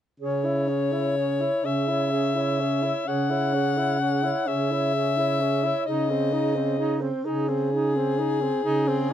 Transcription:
0.20 C#3 C#4 G#4 C#5
0.44 E4 C#5
0.68 C#4 G#4
0.92 E4 C#5
1.16 C#4 G#4
1.40 E4 C#5
1.64 C#3 C#4 G#4 E5
1.88 E4 C#5
2.11 C#4 G#4
2.34 E4 C#5
2.59 C#4 G#4
2.82 E4 C#5
3.06 C#3 C#4 G#4 F#5
3.30 E4 C#5
3.53 C#4 G#4
3.77 E4 C#5
4.00 C#4 G#4
4.23 E4 C#5
4.46 C#3 C#4 G#4 E5
4.71 E4 C#5
4.94 C#4 G#4
5.17 E4 C#5
5.40 C#4 G#4
5.64 E4 C#5
5.86 C#3 D#4 G#4 D#5
6.10 C4 C5
6.32 D#4 G#4
6.55 C4 C5
6.79 D#4 G#4
7.01 C4 C5
7.25 C#3 D#4 G#4
7.48 C4 C5
7.72 D#4 G#4
7.96 C4 C5
8.18 D#4 G#4
8.41 C4 C5
8.64 C#3 D#4 G#4
8.88 C4 C5

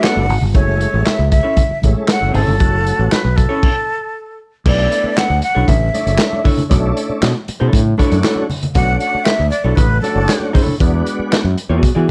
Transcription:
Already playing: F#3 A3 B3 D4
0.01 B3 F#4 A4 D5 F#5, snare, clap, closed hi-hat
0.16 F#1, high conga
0.29 G#1, open hi-hat, muted conga, low conga
0.41 G1, low conga
0.54 F#1 G#3 A3 C#4 E4 C#5, kick, closed hi-hat
0.81 closed hi-hat, muted conga
0.94 A1
1.05 E5, muted fingered electric bass stroke, snare, clap, closed hi-hat
1.19 C#2
1.31 E5, kick, closed hi-hat, muted conga
1.43 C#4 E4 A4 C#5
1.57 kick, closed hi-hat, high conga, low conga
1.71 muted fingered electric bass stroke
1.82 A1 G#3 A3 C#4 E4, kick, closed hi-hat, high conga
2.08 F#5, snare, clap, closed hi-hat, muted conga
2.21 F#1, high conga
2.33 G#1 C#4 E4 A4 C#5, open hi-hat, muted conga, low conga
2.47 G1, low conga
2.60 F#1 F#3 A3 C#4 F#4, kick, closed hi-hat
2.86 closed hi-hat, muted conga
2.99 A1
3.11 B4, snare, clap, closed hi-hat
3.25 B1
3.36 A4, kick, closed hi-hat, muted conga
3.49 C#4 E4 A4 C#5
3.63 kick, crash
4.65 B1 A3 B3 D4 E4 D5, kick, crash, muted conga
4.91 closed hi-hat, muted conga
5.04 muted fingered electric bass stroke
5.17 F#5, snare, clap, closed hi-hat, muted conga
5.30 D2
5.42 F#5, closed hi-hat, muted conga
5.55 B1 D4 E4 A4 C#5
5.68 A1 E5, kick, closed hi-hat, high conga, low conga
5.94 A3 C#4 D4 D#4, closed hi-hat, high conga
6.01 E4
6.07 F#1, closed hi-hat
6.19 snare, clap, closed hi-hat, muted conga
6.33 high conga
6.44 D4 E4 A4 C#5, kick, open hi-hat, muted conga, low conga
6.58 closed hi-hat, low conga
6.69 B1 A3 C#4 D4 E4, kick, closed hi-hat, muted conga
6.97 closed hi-hat
7.10 muted fingered electric bass stroke
7.21 B2, snare, clap, closed hi-hat, muted conga
7.48 muted fingered electric bass stroke, closed hi-hat, muted conga
7.60 B2 D4 E4 A4 C#5
7.73 A2, kick, closed hi-hat, muted conga, high conga, low conga
7.97 A3 C#4 D4 E4 F#4 A4 C#5, kick, closed hi-hat, high conga
8.12 F#2, closed hi-hat
8.23 D4 E4 A4 C#5, snare, clap, closed hi-hat, muted conga
8.36 high conga
8.50 open hi-hat, muted conga, low conga
8.63 closed hi-hat, low conga
8.75 B1 A3 C#4 D4 F#4 F#5, kick, closed hi-hat
9.00 F#5, closed hi-hat
9.15 muted fingered electric bass stroke
9.24 E5, snare, clap, closed hi-hat, muted conga
9.40 D2
9.50 D5, closed hi-hat, muted conga
9.64 B1 D4 E4 A4 C#5
9.75 A1 B4, kick, closed hi-hat, high conga, low conga
10.01 A3 C#4 D4 F#4 A4, closed hi-hat, high conga
10.16 F#1
10.28 snare, clap, closed hi-hat, muted conga
10.40 high conga
10.53 D4 E4 A4 C#5, kick, open hi-hat, low conga
10.67 low conga
10.80 E2 G#3 B3 D4 F#4, kick, closed hi-hat
11.06 closed hi-hat, muted conga
11.19 muted fingered electric bass stroke
11.33 snare, clap, closed hi-hat
11.44 F#2
11.57 closed hi-hat, muted conga
11.69 E2 B3 F#4 G#4 D5
11.83 kick, closed hi-hat, muted conga, high conga, low conga
11.95 E3 B3 F#4 G#4 D5

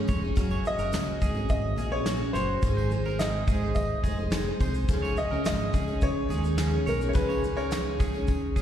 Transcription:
0.07 F1 G#3 C#4 D#4 C#5, kick, tambourine, shaker
0.12 G#4
0.22 G#3 C#4 D#4 G#4
0.35 F#1 F#3 A#3 C#4 F#4 G#4, kick, tambourine, shaker
0.50 C#5, tambourine
0.64 A#3 C#4 F#4 G#4 D#5, shaker
0.78 F#1 C#4 F#4 G#4 A#4, tambourine, shaker
0.91 C#2 F#3 A#3 C#4 F#4 G#4, snare, tambourine, shaker
1.20 G#1 A#3 C#4 F#4 G#4, kick, tambourine, shaker
1.34 C#4 F#4 G#4, tambourine
1.49 G#1 D#5, kick, tambourine, shaker
1.76 A#1 A#3 C#4 F#4 G#4, tambourine, shaker
1.92 C#4 F#4 G#4 C#5
2.05 F#3 A#3 C#4 F#4 G#4, snare, tambourine, shaker
2.19 C#4 F#4 G#4
2.33 F#1 A#3 C#4 F#4 C5 C#5, snare, tambourine, shaker
2.38 G#4
2.62 G#1 G#2 D#3 G#3 D#4 G#4 C5, kick, tambourine, shaker
2.77 C5, tambourine
2.90 G#3 D#4 G#4 C5, shaker
3.05 G#3 D#4 G#4 A#4 C5, tambourine
3.19 G#2 D#3 G#3 D#4 G#4 C5 D#5, snare, tambourine, shaker
3.47 G#1 G#3 D#4 G#4, kick, tambourine, shaker
3.51 C5
3.62 G#3 D#4 G#4 C5
3.75 D#5, kick, tambourine, shaker
4.03 F1 G#3 D#4 G#4, kick, tambourine, shaker
4.08 C5
4.17 G#3 D#4 G#4 C5
4.30 G#2 D#3 G#3 D#4 G#4 C5, snare, tambourine, shaker
4.46 G#3 D#4 G#4 C5
4.60 C2 G#3 D#4 G#4 C5, kick, tambourine, shaker
4.74 tambourine, shaker
4.88 C#2 C#3 F3 G#3 C#4 D#4 G#4, kick, tambourine, shaker
5.02 C#5, tambourine
5.16 G#3 C#4 D#4 G#4 D#5, shaker
5.30 C#2 G#3 C#4 D#4 G#4 A#4
5.44 G#1 C#3 F3 G#3 C#4 D#4 G#4 D#5, snare, tambourine, shaker
5.72 C#2 G#3 C#4 D#4 G#4, kick, tambourine, shaker
5.87 G#3 C#4 D#4 G#4, tambourine
6.01 C#2 C#5, kick, tambourine, shaker
6.29 D#2 G#3 C#4 D#4 G#4, tambourine, shaker
6.44 G#3 C#4 D#4 G#4, shaker
6.58 C#3 F3 G#3 C#4 D#4 G#4, snare, tambourine, shaker
6.71 G#3 C#4 D#4 G#4
6.86 B1 G#3 C#4 D#4 G#4 A#4 C#5, tambourine, shaker
6.99 G#3 C#4 D#4 G#4, shaker
7.09 C#5
7.13 C#2 C#3 F3 G#3 C#4 D#4 G#4 B4, kick, tambourine, shaker
7.29 C#5, tambourine
7.42 G#3 C#4 D#4 G#4, shaker
7.56 G#3 C#4 D#4 G#4 A#4 C#5, tambourine
7.71 C#3 F3 G#3 C#4 D#4 G#4, snare, tambourine, shaker
7.98 C#2 G#3 C#4 D#4 G#4, kick, tambourine, shaker
8.13 G#3 C#4 D#4 G#4, tambourine
8.27 kick, tambourine, shaker
8.56 G#1 G#3 C#4 D#4 G#4, kick, tambourine, shaker

